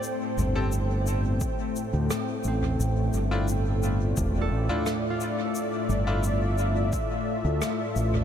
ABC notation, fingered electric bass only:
X:1
M:4/4
L:1/16
Q:1/4=87
K:Ddor
V:1 name="Fingered electric bass" clef=bass
z2 G,,,6 z3 D,, z2 A,,,2 | A,,,2 G,,,6 E,,,2 A,,, z4 z | z2 G,,,6 z3 D,, z2 A,,,2 |]